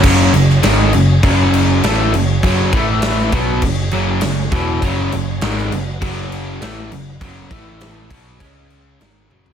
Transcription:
<<
  \new Staff \with { instrumentName = "Tonewheel organ" } { \time 4/4 \key fis \minor \tempo 4 = 100 << { <fis gis'>1~ | <fis gis'>8 <a b'>4 <fis gis'>2~ <fis gis'>8~ | <fis gis'>1~ | <fis gis'>8 <a b'>4 <fis gis'>8 cis''4 fis4 | } \\ { cis'1~ | cis'8 e'4 cis'2~ cis'8~ | cis'4. b2~ b8~ | b8 e'4 cis'2~ cis'8 | } >> }
  \new Staff \with { instrumentName = "Distorted electric guitar" } { \clef bass \time 4/4 \key fis \minor r1 | r1 | <fis, cis fis>8 <fis, cis>8 <gis, dis gis>8 <fis, cis>8 <fis, cis fis>4 <a, e a>8 <fis, cis>8 | <fis, cis fis>8 <a, e a>4 <b, fis b>8 <cis gis cis'>4 <gis, dis gis>8 <fis, cis fis>8 | }
  \new Staff \with { instrumentName = "Overdriven electric guitar" } { \clef bass \time 4/4 \key fis \minor <fis, cis fis>8 <fis, cis>8 <gis, dis gis>8 <fis, cis>8 <fis, cis fis>4 <a, e a>8 <fis, cis>8 | <fis, cis fis>8 <a, e a>4 <b, fis b>8 <fis, cis>8 <fis, cis fis>8 <fis, cis>8 <e, b, e>8 | <fis, cis fis>8 <fis, cis>8 <gis, dis gis>8 <fis, cis>8 <fis, cis fis>4 <a, e a>8 <fis, cis>8 | <fis, cis fis>8 <a, e a>4 <b, fis b>8 <cis gis cis'>4 <gis, dis gis>8 <fis, cis fis>8 | }
  \new Staff \with { instrumentName = "Overdriven electric guitar" } { \clef bass \time 4/4 \key fis \minor <fis, cis fis>8 <fis, cis>8 <gis, dis gis>8 <fis, cis>8 <fis, cis fis>4 <a, e a>8 <fis, cis>8 | <fis, cis fis>8 <a, e a>4 <b, fis b>8 <fis, cis>8 <fis, cis fis>8 <fis, cis>8 <e, b, e>8 | <fis, cis fis>8 <fis, cis>8 <gis, dis gis>8 <fis, cis>8 <fis, cis fis>4 <a, e a>8 <fis, cis>8 | <fis, cis fis>8 <a, e a>4 <b, fis b>8 <cis gis cis'>4 <gis, dis gis>8 <fis, cis fis>8 | }
  \new Staff \with { instrumentName = "Picked electric bass" } { \clef bass \time 4/4 \key fis \minor fis,,8 fis,,8 gis,,8 fis,,8 fis,,4 a,,8 fis,,8 | fis,,8 a,,4 b,,8 fis,,8 fis,,8 fis,,8 e,,8 | fis,,8 fis,,8 gis,,8 fis,,8 fis,,4 a,,8 fis,,8 | fis,,8 a,,4 b,,8 cis,4 gis,,8 fis,,8 | }
  \new DrumStaff \with { instrumentName = "Drums" } \drummode { \time 4/4 <cymc bd>8 cymc16 sn16 <cymc sn>8 cymc8 <cymc bd>8 cymc8 <cymc sn>8 cymc8 | <cymc bd>8 <cymc bd>8 <cymc sn>16 sn16 <cymc bd>8 <cymc bd>8 cymc8 <cymc sn>8 <cymc bd>8 | <cymc bd>8 cymc8 <cymc sn>16 sn16 cymc8 <cymc bd>8 cymc8 <cymc sn>8 cymc8 | <cymc bd>8 <cymc bd>8 <cymc sn>8 <cymc bd>8 <cymc bd>8 cymc8 <cymc sn>8 tommh16 tomfh16 | }
>>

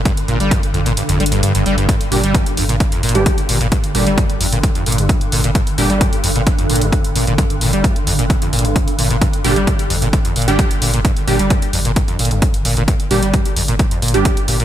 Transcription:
<<
  \new Staff \with { instrumentName = "Synth stab" } { \time 4/4 \key g \minor \tempo 4 = 131 r1 | r8 <g d' g'>16 r2 <g d' g'>16 r4 | r8 <g d' g'>16 r2. r16 | r8 <g d' g'>16 r2. r16 |
r1 | r8 <g d' g'>16 r2 <g d' g'>16 r4 | r8 <g d' g'>16 r2. r16 | r8 <g d' g'>16 r2 <g d' g'>16 r4 | }
  \new Staff \with { instrumentName = "Synth drone" } { \clef bass \time 4/4 \key g \minor <g, d>1 | <g, d>1~ | <g, d>1~ | <g, d>1~ |
<g, d>1~ | <g, d>1~ | <g, d>1~ | <g, d>1 | }
  \new Staff \with { instrumentName = "Acid bass" } { \clef bass \time 4/4 \key g \minor g,16 r16 bes,16 g16 f,16 r16 f,16 bes,16 g,,16 f,16 g16 g,16 g,16 g,16 g16 g,16 | r8 bes,16 g16 f,16 r16 f,16 bes,16 g,,16 f,16 bes,16 g,16 f,16 r16 bes,16 bes,16 | g,16 r16 bes,16 g16 f,16 r16 f,16 bes,16 g,,16 f,16 bes,16 g,16 f,16 r16 bes,16 bes,16 | g,16 r16 bes,16 g16 f,16 r16 f,16 bes,16 g,,16 f,16 bes,16 g,16 f,16 r16 bes,16 bes,16 |
g,16 r16 bes,16 g16 f,16 r16 f,16 bes,16 g,,16 f,16 bes,16 g,16 f,16 r16 bes,16 bes,16 | g,16 r16 bes,16 g16 f,16 r16 f,16 bes,16 g,,16 f,16 bes,16 g,16 f,16 r16 bes,16 bes,16 | g,16 r16 bes,16 g16 f,16 r16 f,16 bes,16 g,,16 f,16 bes,16 g,16 f,16 r16 bes,16 bes,16 | g,16 r16 bes,16 g16 f,16 r16 f,16 bes,16 g,,16 f,16 bes,16 g,16 f,16 r16 bes,16 bes,16 | }
  \new Staff \with { instrumentName = "Sub bass" } { \clef bass \time 4/4 \key g \minor r16 g,,16 g,,16 g,,16 r16 g,,16 g,,16 g,,16 r16 g,,16 g,,16 g,,16 r16 g,,16 g,,16 g,,16 | r16 g,,16 g,,16 g,,16 r16 g,,16 g,,16 g,,16 r16 g,,16 g,,16 g,,16 r16 g,,16 g,,16 g,,16 | r16 g,,16 g,,16 g,,16 r16 g,,16 g,,16 g,,16 r16 g,,16 g,,16 g,,16 r16 g,,16 g,,16 g,,16 | r16 g,,16 g,,16 g,,16 r16 g,,16 g,,16 g,,16 r16 g,,16 g,,16 g,,16 r16 g,,16 g,,16 g,,16 |
r16 g,,16 g,,16 g,,16 r16 g,,16 g,,16 g,,16 r16 g,,16 g,,16 g,,16 r16 g,,16 g,,16 g,,16 | r16 g,,16 g,,16 g,,16 r16 g,,16 g,,16 g,,16 r16 g,,16 g,,16 g,,16 r16 g,,16 g,,16 g,,16 | r16 g,,16 g,,16 g,,16 r16 g,,16 g,,16 g,,16 r16 g,,16 g,,16 g,,16 r16 g,,16 g,,16 g,,16 | r16 g,,16 g,,16 g,,16 r16 g,,16 g,,16 g,,16 r16 g,,16 g,,16 g,,16 r16 g,,16 g,,16 g,,16 | }
  \new DrumStaff \with { instrumentName = "Drums" } \drummode { \time 4/4 <hh bd>16 hh16 hh16 hh16 <hh bd>16 hh16 hh16 hh16 hh16 hh16 hh32 hh32 hh16 hh16 hh16 hh16 hh16 | <hh bd>16 hh16 hho16 hh16 <hh bd>16 hh16 hho16 hh16 <hh bd>16 hh16 hho32 hh32 hh16 <hh bd>16 hh16 hho16 hh16 | <hh bd>16 hh16 hho16 hh16 <hh bd>16 hh16 hho16 hh16 <hh bd>16 hh16 hho32 hh32 hh16 <hh bd>16 hh16 hho16 hh16 | <hh bd>16 hh16 hho16 hh16 <hh bd>16 hh16 hho16 hh16 <hh bd>16 hh16 hho32 hh32 hh16 <hh bd>16 hh16 hho16 hh16 |
<hh bd>16 hh16 hho16 hh16 <hh bd>16 hh16 hho16 hh16 <hh bd>16 hh16 hho32 hh32 hh16 <hh bd>16 hh16 hho16 hh16 | <hh bd>16 hh16 hho16 hh16 <hh bd>16 hh16 hho16 hh16 <hh bd>16 hh16 hho32 hh32 hh16 <hh bd>16 hh16 hho16 hh16 | <hh bd>16 hh16 hho16 hh16 <hh bd>16 hh16 hho16 hh16 <hh bd>16 hh16 hho32 hh32 hh16 <hh bd>16 hh16 hho16 hh16 | <hh bd>16 hh16 hho16 hh16 <hh bd>16 hh16 hho16 hh16 <hh bd>16 hh16 hho32 hh32 hh16 <hh bd>16 hh16 hho16 hh16 | }
>>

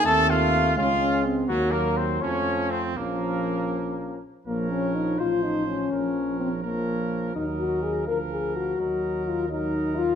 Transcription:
<<
  \new Staff \with { instrumentName = "Cornet" } { \time 6/8 \key bes \minor \tempo 4. = 83 a''8 f''4 f''4 r8 | ges'8 bes'8 c''8 des''4 c''8 | bes'2~ bes'8 r8 | des''4. c''4. |
des''4. des''4. | ees''4. f''4. | ees''4. ees''4. | }
  \new Staff \with { instrumentName = "Trumpet" } { \time 6/8 \key bes \minor a'8 f'4 f'4 r8 | ges8 bes8 c'8 des'4 c'8 | bes2~ bes8 r8 | bes'4. c''4. |
bes'4. bes'4. | bes'4. bes'4. | bes'4. bes'4. | }
  \new Staff \with { instrumentName = "French horn" } { \time 6/8 \key bes \minor c'4. des'8 des'8 c'8 | bes4. a4. | des'2~ des'8 r8 | bes8 des'8 ees'8 f'8 ees'8 des'8~ |
des'4 c'8 bes4. | ees'8 ges'8 aes'8 bes'8 aes'8 ges'8~ | ges'4 f'8 ees'4 f'8 | }
  \new Staff \with { instrumentName = "Trombone" } { \clef bass \time 6/8 \key bes \minor a4. aes4. | ges4. f4. | f2~ f8 r8 | f4. f4. |
f4. f4. | ges4. f4. | ges4. ges4. | }
  \new Staff \with { instrumentName = "Tuba" } { \clef bass \time 6/8 \key bes \minor ees,4. des,4. | ees,4. f,4. | bes,,2~ bes,,8 r8 | bes,,4. a,,4. |
bes,,2. | ees,4. d,4. | ees,2. | }
>>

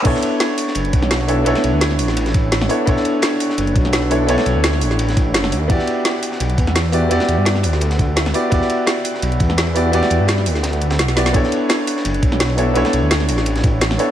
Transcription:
<<
  \new Staff \with { instrumentName = "Grand piano" } { \time 4/4 \key b \minor \tempo 4 = 170 <b d' e' a' cis''>2.~ <b d' e' a' cis''>8 <b d' e' a' cis''>8 | <b d' e' a' cis''>2.~ <b d' e' a' cis''>8 <b d' e' a' cis''>8 | <b d' e' a' cis''>2.~ <b d' e' a' cis''>8 <b d' e' a' cis''>8 | <b d' e' a' cis''>2.~ <b d' e' a' cis''>8 r8 |
<b e' fis' g' d''>2.~ <b e' fis' g' d''>8 <b e' fis' g' d''>8 | <b e' fis' g' d''>2.~ <b e' fis' g' d''>8 <b e' fis' g' d''>8 | <b e' fis' g' d''>2.~ <b e' fis' g' d''>8 <b e' fis' g' d''>8 | <b e' fis' g' d''>2.~ <b e' fis' g' d''>8 <b e' fis' g' d''>8 |
<b d' e' a' cis''>2.~ <b d' e' a' cis''>8 <b d' e' a' cis''>8 | <b d' e' a' cis''>2.~ <b d' e' a' cis''>8 <b d' e' a' cis''>8 | }
  \new Staff \with { instrumentName = "Detuned saw bass" } { \clef bass \time 4/4 \key b \minor b,,16 r4. r16 fis,,8 b,,4. | b,,16 r16 b,,16 d,8. a,,2 r8 | b,,16 r4. r16 fis,,8 b,,4. | b,,16 r16 b,,16 d,8. a,,4. fis,,8 e,16 d,16 |
e,16 r4. r16 b,,8 e,4. | e,16 r16 e,16 g,8. d,2 r8 | e,16 r4. r16 b,,8 e,4. | e,16 r16 e,16 g,8. d,4. b,,4 |
b,,16 r4. r16 fis,,8 b,,4. | b,,16 r16 b,,16 d,8. a,,2 r8 | }
  \new DrumStaff \with { instrumentName = "Drums" } \drummode { \time 4/4 <cymc hh bd cymr>16 sn16 <hh cymr>8 <hh cymr sn>8 <hho cymr>16 sn16 <hh cymr>16 hh16 <hh bd cymr>16 sn16 <hh cymr sn>16 cymr16 <hho cymr>8 | <hh cymr>16 sn16 <hh cymr>8 <hh cymr sn>16 sn16 <hho cymr>16 sn16 <hh cymr>16 <hh sn>16 <hh bd cymr>8 <hh cymr sn>16 sn16 <hho cymr>8 | <hh bd cymr>16 sn16 <hh cymr>8 <hh cymr sn>8 <hho cymr>16 sn16 <hh cymr>16 hh16 <hh bd cymr>16 sn16 <hh cymr sn>16 cymr16 <hho cymr>8 | <hh cymr>16 sn16 <hh cymr>8 <hh cymr sn>16 sn16 hho16 sn16 <hh cymr>16 <hh sn>16 <hh bd cymr>8 <hh cymr sn>16 sn16 <hho cymr>8 |
<hh bd cymr>16 sn16 <hh cymr>8 <hh cymr sn>8 <hho cymr>16 sn16 <hh cymr>16 hh16 <hh bd cymr>16 sn16 <hh cymr sn>16 cymr16 <hho cymr>8 | <hh cymr>16 sn16 <hh cymr>8 <hh cymr sn>16 sn16 <hho cymr>16 sn16 <hh cymr>16 <hh sn>16 <hh bd cymr>8 <hh cymr sn>16 sn16 <hho cymr>8 | <hh bd cymr>16 sn16 <hh cymr>8 <hh cymr sn>8 <hho cymr>16 sn16 <hh cymr>16 hh16 <hh bd cymr>16 sn16 <hh cymr sn>16 cymr16 <hho cymr>8 | <hh cymr>16 sn16 <hh cymr>8 <hh cymr sn>16 sn16 <hho cymr>16 sn16 <hh cymr sn>16 hh16 <hh cymr>16 <cymr sn>16 <hh sn>16 <hh cymr sn>16 <hho cymr sn>16 sn16 |
<hh bd cymr>16 sn16 <hh cymr>8 <hh cymr sn>8 <hho cymr>16 sn16 <hh cymr>16 hh16 <hh bd cymr>16 sn16 <hh cymr sn>16 cymr16 <hho cymr>8 | <hh cymr>16 sn16 <hh cymr>8 <hh cymr sn>16 sn16 <hho cymr>16 sn16 <hh cymr>16 <hh sn>16 <hh bd cymr>8 <hh cymr sn>16 sn16 <hho cymr>8 | }
>>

